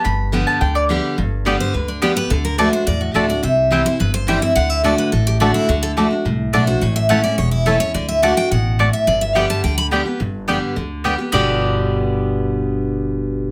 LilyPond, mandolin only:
\new Staff \with { instrumentName = "Mandolin" } { \time 4/4 \key g \major \tempo 4 = 213 b''4. a''8 g''8 d''8 r4 | r4 <b g' d'' g''>8 r4. <b g' d'' g''>8 r8 | r4 <a fis' d'' a''>8 r4. <a fis' d'' a''>8 r8 | r4 <c' e' c'' g''>8 r4. <c' e' c'' g''>8 r8 |
r4 <a fis' d'' a''>8 r4. <a fis' d'' a''>8 r8 | r4 <a fis' d'' a''>8 r4. <a fis' d'' a''>8 r8 | r4 <a e' cis'' a''>8 r4. <a e' cis'' a''>8 r8 | r4 <a fis' d'' a''>8 r4. <a fis' d'' a''>8 r8 |
r4 <b g' d'' g''>8 r4. <b g' d'' g''>8 r8 | r4 <b g' d'' g''>8 r4. <b g' d'' g''>8 r8 | <b g' d'' g''>1~ | <b g' d'' g''>1 | }